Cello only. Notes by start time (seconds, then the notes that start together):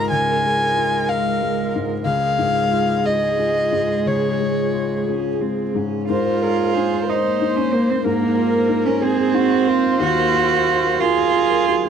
Already playing: G#3
2.07 G#3
5.09 C#4
5.41 C4
5.77 C#4
6.09 F4
7.09 D#4
7.56 C#4
7.73 A#3
7.90 C4
8.04 A#3
8.86 C#4
9.02 C4
10.02 F#4
11.01 F4